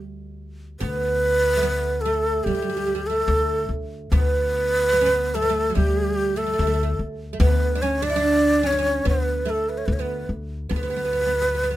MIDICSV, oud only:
0, 0, Header, 1, 2, 480
1, 0, Start_track
1, 0, Tempo, 825309
1, 469, Time_signature, 4, 2, 24, 8
1, 6843, End_track
2, 0, Start_track
2, 0, Title_t, "Oud"
2, 0, Program_c, 0, 24
2, 468, Note_on_c, 0, 59, 78
2, 908, Note_off_c, 0, 59, 0
2, 911, Note_on_c, 0, 57, 56
2, 945, Note_off_c, 0, 57, 0
2, 948, Note_on_c, 0, 59, 83
2, 1193, Note_off_c, 0, 59, 0
2, 1196, Note_on_c, 0, 57, 73
2, 1434, Note_off_c, 0, 57, 0
2, 1436, Note_on_c, 0, 55, 65
2, 1474, Note_off_c, 0, 55, 0
2, 1481, Note_on_c, 0, 55, 47
2, 1519, Note_off_c, 0, 55, 0
2, 1526, Note_on_c, 0, 55, 53
2, 1560, Note_off_c, 0, 55, 0
2, 1567, Note_on_c, 0, 55, 50
2, 1603, Note_off_c, 0, 55, 0
2, 1610, Note_on_c, 0, 55, 53
2, 1649, Note_off_c, 0, 55, 0
2, 1667, Note_on_c, 0, 55, 45
2, 1699, Note_off_c, 0, 55, 0
2, 1715, Note_on_c, 0, 55, 68
2, 1745, Note_off_c, 0, 55, 0
2, 1801, Note_on_c, 0, 57, 63
2, 2130, Note_off_c, 0, 57, 0
2, 2399, Note_on_c, 0, 59, 84
2, 2860, Note_off_c, 0, 59, 0
2, 2867, Note_on_c, 0, 59, 77
2, 2908, Note_off_c, 0, 59, 0
2, 2916, Note_on_c, 0, 61, 68
2, 2944, Note_on_c, 0, 59, 80
2, 2951, Note_off_c, 0, 61, 0
2, 3109, Note_off_c, 0, 59, 0
2, 3113, Note_on_c, 0, 57, 75
2, 3151, Note_off_c, 0, 57, 0
2, 3154, Note_on_c, 0, 59, 62
2, 3190, Note_off_c, 0, 59, 0
2, 3196, Note_on_c, 0, 57, 71
2, 3313, Note_on_c, 0, 54, 53
2, 3344, Note_off_c, 0, 57, 0
2, 3346, Note_on_c, 0, 55, 67
2, 3349, Note_off_c, 0, 54, 0
2, 3698, Note_off_c, 0, 55, 0
2, 3700, Note_on_c, 0, 57, 61
2, 3742, Note_off_c, 0, 57, 0
2, 3760, Note_on_c, 0, 57, 49
2, 3794, Note_off_c, 0, 57, 0
2, 3801, Note_on_c, 0, 57, 52
2, 3836, Note_off_c, 0, 57, 0
2, 3847, Note_on_c, 0, 57, 47
2, 3872, Note_off_c, 0, 57, 0
2, 3879, Note_on_c, 0, 57, 58
2, 3911, Note_off_c, 0, 57, 0
2, 3918, Note_on_c, 0, 57, 48
2, 3960, Note_off_c, 0, 57, 0
2, 3972, Note_on_c, 0, 57, 57
2, 4008, Note_off_c, 0, 57, 0
2, 4263, Note_on_c, 0, 57, 60
2, 4301, Note_off_c, 0, 57, 0
2, 4303, Note_on_c, 0, 59, 90
2, 4509, Note_on_c, 0, 62, 64
2, 4520, Note_off_c, 0, 59, 0
2, 4542, Note_off_c, 0, 62, 0
2, 4551, Note_on_c, 0, 61, 82
2, 4664, Note_off_c, 0, 61, 0
2, 4667, Note_on_c, 0, 62, 92
2, 4706, Note_off_c, 0, 62, 0
2, 4708, Note_on_c, 0, 64, 73
2, 4744, Note_off_c, 0, 64, 0
2, 4746, Note_on_c, 0, 62, 96
2, 5018, Note_off_c, 0, 62, 0
2, 5021, Note_on_c, 0, 61, 79
2, 5064, Note_off_c, 0, 61, 0
2, 5074, Note_on_c, 0, 62, 63
2, 5108, Note_off_c, 0, 62, 0
2, 5111, Note_on_c, 0, 61, 75
2, 5265, Note_on_c, 0, 59, 84
2, 5272, Note_off_c, 0, 61, 0
2, 5497, Note_off_c, 0, 59, 0
2, 5499, Note_on_c, 0, 57, 76
2, 5613, Note_off_c, 0, 57, 0
2, 5810, Note_on_c, 0, 59, 54
2, 5972, Note_off_c, 0, 59, 0
2, 6220, Note_on_c, 0, 59, 65
2, 6252, Note_off_c, 0, 59, 0
2, 6259, Note_on_c, 0, 59, 52
2, 6291, Note_off_c, 0, 59, 0
2, 6298, Note_on_c, 0, 59, 56
2, 6333, Note_off_c, 0, 59, 0
2, 6340, Note_on_c, 0, 59, 53
2, 6370, Note_off_c, 0, 59, 0
2, 6377, Note_on_c, 0, 59, 50
2, 6419, Note_off_c, 0, 59, 0
2, 6426, Note_on_c, 0, 59, 45
2, 6465, Note_off_c, 0, 59, 0
2, 6472, Note_on_c, 0, 59, 51
2, 6513, Note_off_c, 0, 59, 0
2, 6520, Note_on_c, 0, 59, 44
2, 6545, Note_off_c, 0, 59, 0
2, 6552, Note_on_c, 0, 59, 50
2, 6593, Note_off_c, 0, 59, 0
2, 6600, Note_on_c, 0, 59, 42
2, 6634, Note_off_c, 0, 59, 0
2, 6641, Note_on_c, 0, 59, 57
2, 6672, Note_off_c, 0, 59, 0
2, 6679, Note_on_c, 0, 59, 47
2, 6708, Note_off_c, 0, 59, 0
2, 6715, Note_on_c, 0, 59, 53
2, 6760, Note_off_c, 0, 59, 0
2, 6767, Note_on_c, 0, 59, 52
2, 6802, Note_off_c, 0, 59, 0
2, 6809, Note_on_c, 0, 59, 48
2, 6843, Note_off_c, 0, 59, 0
2, 6843, End_track
0, 0, End_of_file